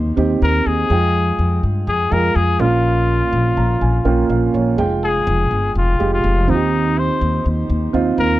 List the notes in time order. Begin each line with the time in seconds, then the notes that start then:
Already playing: D#2 D#3 C4 D#4 G4
0.17 D#2 C4 D#4 G4
0.42 D#2 A#4
0.66 D#2 G#4
0.90 F2 G#3 F4 G5
1.39 F2
1.63 G2
1.87 F2 G#4
2.11 F2 G#3 F4 G#4 A#4
2.36 F2 G#4
2.59 A#1 A#2 A#3 C#4 F4
3.33 A#1
3.57 A#1 A#5
3.81 A#1 G#5
4.05 A#1 A#3 C#4 F4 G5
4.30 A#1 F5
4.54 A#1 C#5
4.77 F1 G#3 F4 G5
5.04 G#4
5.27 F1
5.51 G1
5.75 F1 F4
5.99 F1 G#3 F4 G4
6.14 F4
6.24 F1
6.48 D#2 D#3 C4 D#4 F4
6.55 G4
6.98 C5
7.21 D#2
7.46 D#2
7.70 D#2
7.93 D#2 C4 D#4 F4
8.18 D#2 A#4